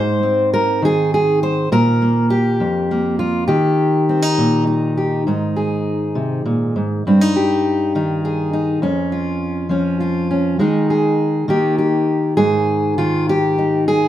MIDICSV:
0, 0, Header, 1, 2, 480
1, 0, Start_track
1, 0, Key_signature, -4, "major"
1, 0, Tempo, 592885
1, 1380, Time_signature, 6, 3, 24, 8
1, 11400, End_track
2, 0, Start_track
2, 0, Title_t, "Steel-string acoustic guitar"
2, 0, Program_c, 0, 25
2, 0, Note_on_c, 0, 44, 76
2, 0, Note_on_c, 0, 72, 99
2, 186, Note_on_c, 0, 60, 46
2, 430, Note_off_c, 0, 72, 0
2, 433, Note_on_c, 0, 70, 91
2, 665, Note_on_c, 0, 51, 66
2, 667, Note_off_c, 0, 70, 0
2, 688, Note_on_c, 0, 68, 94
2, 914, Note_off_c, 0, 68, 0
2, 923, Note_on_c, 0, 68, 80
2, 1152, Note_off_c, 0, 68, 0
2, 1157, Note_on_c, 0, 72, 94
2, 1350, Note_off_c, 0, 44, 0
2, 1353, Note_off_c, 0, 51, 0
2, 1353, Note_off_c, 0, 60, 0
2, 1389, Note_off_c, 0, 72, 0
2, 1392, Note_on_c, 0, 46, 80
2, 1396, Note_on_c, 0, 70, 101
2, 1634, Note_on_c, 0, 58, 49
2, 1861, Note_off_c, 0, 70, 0
2, 1865, Note_on_c, 0, 67, 92
2, 2105, Note_off_c, 0, 46, 0
2, 2106, Note_on_c, 0, 41, 67
2, 2346, Note_off_c, 0, 58, 0
2, 2357, Note_on_c, 0, 58, 51
2, 2580, Note_off_c, 0, 67, 0
2, 2583, Note_on_c, 0, 65, 84
2, 2798, Note_off_c, 0, 58, 0
2, 2811, Note_off_c, 0, 65, 0
2, 2814, Note_on_c, 0, 67, 79
2, 2821, Note_on_c, 0, 51, 72
2, 2822, Note_off_c, 0, 41, 0
2, 3313, Note_on_c, 0, 60, 51
2, 3420, Note_off_c, 0, 60, 0
2, 3420, Note_on_c, 0, 63, 41
2, 3546, Note_on_c, 0, 46, 63
2, 3772, Note_off_c, 0, 63, 0
2, 3782, Note_on_c, 0, 63, 50
2, 4017, Note_off_c, 0, 67, 0
2, 4027, Note_on_c, 0, 67, 50
2, 4231, Note_off_c, 0, 63, 0
2, 4233, Note_off_c, 0, 67, 0
2, 4261, Note_off_c, 0, 46, 0
2, 4265, Note_on_c, 0, 44, 66
2, 4273, Note_on_c, 0, 63, 51
2, 4505, Note_on_c, 0, 68, 50
2, 4981, Note_on_c, 0, 48, 55
2, 5219, Note_off_c, 0, 48, 0
2, 5226, Note_on_c, 0, 46, 61
2, 5461, Note_off_c, 0, 44, 0
2, 5462, Note_off_c, 0, 46, 0
2, 5472, Note_on_c, 0, 44, 58
2, 5672, Note_off_c, 0, 68, 0
2, 5676, Note_off_c, 0, 63, 0
2, 5699, Note_off_c, 0, 51, 0
2, 5705, Note_off_c, 0, 44, 0
2, 5722, Note_on_c, 0, 43, 68
2, 5726, Note_on_c, 0, 60, 53
2, 5839, Note_off_c, 0, 60, 0
2, 5839, Note_on_c, 0, 63, 47
2, 5961, Note_on_c, 0, 67, 53
2, 6429, Note_off_c, 0, 63, 0
2, 6437, Note_on_c, 0, 51, 57
2, 6441, Note_on_c, 0, 63, 53
2, 6670, Note_off_c, 0, 67, 0
2, 6678, Note_on_c, 0, 68, 58
2, 6899, Note_off_c, 0, 63, 0
2, 6909, Note_on_c, 0, 63, 54
2, 7115, Note_off_c, 0, 63, 0
2, 7120, Note_off_c, 0, 68, 0
2, 7122, Note_off_c, 0, 43, 0
2, 7141, Note_on_c, 0, 41, 66
2, 7148, Note_on_c, 0, 61, 54
2, 7149, Note_off_c, 0, 51, 0
2, 7384, Note_on_c, 0, 65, 54
2, 7847, Note_on_c, 0, 53, 60
2, 7848, Note_off_c, 0, 61, 0
2, 7857, Note_on_c, 0, 61, 53
2, 8089, Note_off_c, 0, 65, 0
2, 8099, Note_on_c, 0, 65, 55
2, 8334, Note_off_c, 0, 61, 0
2, 8344, Note_on_c, 0, 61, 51
2, 8545, Note_off_c, 0, 53, 0
2, 8553, Note_off_c, 0, 61, 0
2, 8574, Note_on_c, 0, 51, 63
2, 8578, Note_on_c, 0, 56, 51
2, 8580, Note_off_c, 0, 65, 0
2, 8581, Note_off_c, 0, 41, 0
2, 8584, Note_on_c, 0, 63, 51
2, 8588, Note_on_c, 0, 68, 59
2, 8816, Note_off_c, 0, 68, 0
2, 8826, Note_on_c, 0, 68, 53
2, 9273, Note_off_c, 0, 63, 0
2, 9275, Note_off_c, 0, 68, 0
2, 9284, Note_off_c, 0, 51, 0
2, 9293, Note_on_c, 0, 51, 66
2, 9297, Note_off_c, 0, 56, 0
2, 9300, Note_on_c, 0, 58, 52
2, 9309, Note_on_c, 0, 67, 61
2, 9310, Note_on_c, 0, 63, 55
2, 9531, Note_off_c, 0, 67, 0
2, 9540, Note_on_c, 0, 67, 54
2, 9992, Note_off_c, 0, 58, 0
2, 9992, Note_off_c, 0, 67, 0
2, 9997, Note_off_c, 0, 63, 0
2, 10014, Note_on_c, 0, 68, 98
2, 10018, Note_on_c, 0, 44, 68
2, 10498, Note_off_c, 0, 51, 0
2, 10498, Note_off_c, 0, 68, 0
2, 10507, Note_on_c, 0, 51, 61
2, 10508, Note_on_c, 0, 65, 84
2, 10743, Note_off_c, 0, 65, 0
2, 10762, Note_on_c, 0, 67, 86
2, 10998, Note_on_c, 0, 63, 47
2, 11232, Note_off_c, 0, 67, 0
2, 11236, Note_on_c, 0, 68, 94
2, 11400, Note_off_c, 0, 44, 0
2, 11400, Note_off_c, 0, 51, 0
2, 11400, Note_off_c, 0, 63, 0
2, 11400, Note_off_c, 0, 68, 0
2, 11400, End_track
0, 0, End_of_file